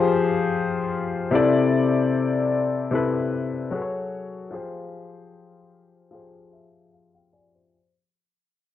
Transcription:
0.00 1.35 F3 medium
0.00 1.35 F4 medium
0.00 1.35 G4 medium
0.00 1.34 G#4 medium
0.00 1.35 C5 loud
1.31 2.36 C3 medium
1.31 2.37 C4 medium
1.31 2.37 E4 medium
1.31 2.38 A4 medium
1.35 2.39 D5 medium
2.91 3.72 C3 medium
2.91 3.72 C4 medium
2.91 3.73 E4 medium
2.91 3.73 A4 medium
2.95 3.74 B4 medium
3.71 4.37 F#3 medium
3.71 4.38 F#4 medium
3.71 4.38 G#4 medium
3.71 4.39 A4 medium
3.75 3.81 B4 medium
3.82 4.43 C#5 medium
4.51 5.56 F3 medium
4.51 5.57 F4 medium
4.51 5.57 G4 medium
4.51 5.58 G#4 medium
4.55 5.58 C5 medium
6.11 7.16 F3 medium
6.11 7.17 F4 medium
6.11 7.17 G4 medium
6.11 7.18 G#4 medium
6.15 6.54 C5 medium
6.53 6.90 E5 medium
6.93 7.13 F5 medium
7.15 7.32 F5 medium
7.15 7.32 G5 medium
7.33 7.54 D5 medium
7.33 7.70 G#5 medium
7.55 7.93 C5 medium

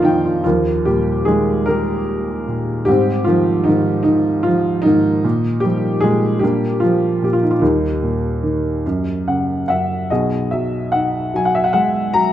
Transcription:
0.00 0.41 A#1 medium
0.00 0.41 F2 medium
0.00 0.41 A#2 medium
0.00 0.05 D#3 medium
0.00 0.46 F3 medium
0.00 0.46 A#3 soft
0.00 0.02 D#4 medium
0.00 0.46 D#4 medium
0.00 0.25 F4 medium
0.00 0.41 D5 medium
0.00 0.47 F5 medium
0.05 0.43 D#3 medium
0.05 0.43 G5 medium
0.25 0.42 F4 medium
0.44 2.83 D#2 medium
0.44 0.84 F3 soft
0.44 0.84 A#3 soft
0.44 0.87 F4 medium
0.85 2.43 A#2 soft
0.85 1.25 G3 medium
0.85 1.23 G4 medium
1.25 2.83 D#3 soft
1.25 1.65 G#3 medium
1.25 1.67 G#4 medium
1.66 2.83 G3 medium
1.66 2.83 A#3 medium
1.66 2.84 G4 medium
1.66 2.90 A#4 medium
2.48 2.86 A#2 soft
2.85 3.65 G#2 medium
2.85 3.24 G3 medium
2.85 3.24 C4 medium
2.85 3.24 D#4 medium
2.85 3.27 G4 medium
3.24 3.67 D#3 soft
3.24 3.64 F3 medium
3.24 3.66 F4 medium
3.64 4.84 G#2 soft
3.64 4.01 D#4 medium
3.68 4.04 D#3 medium
4.03 4.84 D#3 medium
4.03 4.45 D#4 medium
4.43 4.83 F3 medium
4.43 4.85 F4 medium
4.82 5.23 G#2 soft
4.82 5.60 D#3 medium
4.82 5.60 A#3 medium
4.82 5.64 D#4 loud
5.24 6.02 A#2 medium
5.60 6.41 F3 soft
5.60 6.03 G4 medium
5.64 6.01 G3 medium
6.00 6.42 A#2 soft
6.00 6.40 G#3 medium
6.00 6.43 G#4 medium
6.39 6.80 G3 medium
6.39 6.80 A#3 medium
6.39 6.80 D4 medium
6.39 6.82 G4 medium
6.44 7.21 A#2 medium
6.80 7.24 F3 medium
6.80 7.27 F4 medium
7.22 7.61 A#2 soft
7.22 7.34 G4 medium
7.33 7.43 F4 medium
7.42 7.52 D#4 medium
7.51 7.61 F4 medium
7.59 8.81 D#2 medium
7.59 8.42 D#3 soft
7.59 9.64 G3 soft
7.59 9.64 A#3 soft
7.59 9.63 D#4 medium
8.03 8.82 A#2 soft
8.43 8.83 D#3 soft
8.86 9.68 F#2 medium
9.28 10.08 C#3 soft
9.28 9.66 F#5 medium
9.68 10.09 F#2 soft
9.68 10.08 E5 medium
9.68 10.11 F#5 medium
10.10 12.33 B1 soft
10.10 12.33 B2 medium
10.10 11.30 F#4 soft
10.10 11.30 G#4 soft
10.10 10.49 D#5 medium
10.51 11.33 F#3 soft
10.51 10.90 E5 medium
10.92 12.33 D#4 soft
10.92 11.39 F#5 medium
11.34 12.13 F#3 soft
11.34 11.46 G#5 medium
11.45 11.55 F#5 medium
11.55 11.64 E5 medium
11.64 11.71 F#5 medium
11.73 12.33 G#3 medium
11.73 12.11 F#5 medium
12.14 12.33 F#3 soft
12.14 12.33 A#5 medium

